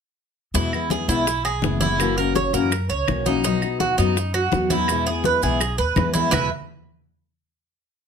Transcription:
0.54 upright bass E2, steel-string acoustic guitar B2 E3 G#3 B3 E4, cuban tres E4, high bongo, high conga, maracas
0.72 steel-string acoustic guitar G#3 B3 E4, high conga, claves, maracas
0.90 cuban tres G#4, high bongo, high conga, maracas
1.08 upright bass B1, steel-string acoustic guitar E3 G#3 B3 E4, cuban tres E4, high conga, maracas
1.26 muted steel-string acoustic guitar stroke, high bongo, high conga, maracas
1.45 cuban tres G#4, high conga, claves, maracas
1.62 upright bass F#1, steel-string acoustic guitar E3 G#3 B3 E4, high bongo, low bongo, high conga, maracas
1.81 steel-string acoustic guitar E3 G#3 B3 E4, cuban tres E4, high conga, maracas
2.00 steel-string acoustic guitar C#3 E3 A#3 C#4 F#4, high bongo, high conga, claves, maracas
2.17 steel-string acoustic guitar A#3 C#4 F#4, cuban tres A#4, high bongo, high conga, maracas
2.35 cuban tres C#5, high bongo, high conga, maracas
2.53 upright bass F#2, steel-string acoustic guitar E3 A#3 C#4 F#4, cuban tres A#4, high bongo, high conga, maracas
2.71 muted steel-string acoustic guitar stroke, high bongo, high conga, claves, maracas
2.90 upright bass C#2, cuban tres C#5, high conga, maracas
3.08 upright bass B1, steel-string acoustic guitar E3 A#3 C#4 F#4, high bongo, low bongo, high conga, claves, maracas
3.26 steel-string acoustic guitar E3 A#3 C#4 F#4, cuban tres D#4, high bongo, high conga, maracas
3.44 steel-string acoustic guitar B2 F#3 B3 D#4 F#4, cuban tres D#4, high bongo, high conga, maracas
3.62 steel-string acoustic guitar B3 D#4 F#4, high conga, claves, maracas
3.80 cuban tres F#4, high bongo, high conga, maracas
3.98 upright bass F#2, steel-string acoustic guitar F#3 B3 D#4 F#4, cuban tres D#4, high conga, maracas
4.16 muted steel-string acoustic guitar stroke, high bongo, high conga, maracas
4.34 cuban tres F#4, high conga, claves, maracas
4.52 upright bass E2, steel-string acoustic guitar F#3 B3 D#4 F#4, high bongo, low bongo, high conga, maracas
4.70 steel-string acoustic guitar F#3 B3 D#4 F#4, cuban tres E4, high conga, maracas
4.88 steel-string acoustic guitar B2 E3 G#3 B3 E4, high bongo, high conga, claves, maracas
5.06 steel-string acoustic guitar G#3 B3 E4, cuban tres G#4, high bongo, high conga, maracas
5.24 cuban tres B4, high bongo, high conga, maracas
5.42 upright bass B1, steel-string acoustic guitar E3 G#3 B3 E4, cuban tres G#4, high bongo, high conga, maracas
5.61 muted steel-string acoustic guitar stroke, high bongo, high conga, claves, maracas
5.78 upright bass D#2, cuban tres B4, high conga, maracas
5.96 upright bass E2, steel-string acoustic guitar E3 G#3 B3 E4, high bongo, low bongo, high conga, claves, maracas
6.14 steel-string acoustic guitar E3 G#3 B3 E4, cuban tres E4, high bongo, high conga, maracas
6.31 upright bass E2, steel-string acoustic guitar E2 B2 E3 G#3 B3 E4, cuban tres E4 B4 E5, low bongo, low conga, claves, maracas

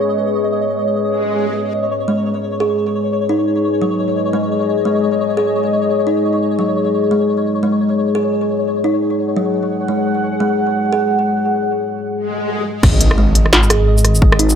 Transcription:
Already playing: ambient pad G#3 G#4 B4 C#5, synth texture D#5
1.04 swell
1.74 synth texture C#5
2.08 kalimba G#3
2.60 kalimba G#4
3.12 ambient pad D#5
3.29 kalimba D#4
3.81 kalimba F#3
4.33 kalimba G#3
4.85 kalimba G#3
5.37 kalimba G#4
6.07 kalimba D#4
6.59 kalimba F#3
7.11 kalimba G#3
7.63 kalimba G#3
8.15 kalimba G#4
8.67 ambient pad F#5
8.84 kalimba D#4
9.36 kalimba F#3
9.88 kalimba G#3
10.40 kalimba G#3
10.93 kalimba G#4
12.14 swell
12.83 detuned saw bass G#1, ambient pad G#3, synth texture D#5, kick, cross-stick, crash, impact
13.01 closed hi-hat
13.11 cross-stick
13.17 kalimba G#3, ambient pad B4
13.30 ambient pad G#4
13.35 closed hi-hat
13.46 cross-stick
13.53 detuned saw bass G#1, snare
13.63 shaker
13.70 kalimba G#4, cross-stick, closed hi-hat
13.87 ambient pad D#5
13.98 shaker
14.05 cross-stick, closed hi-hat
14.15 shaker
14.22 kick
14.32 cross-stick
14.39 kalimba D#4, closed hi-hat
14.49 shaker

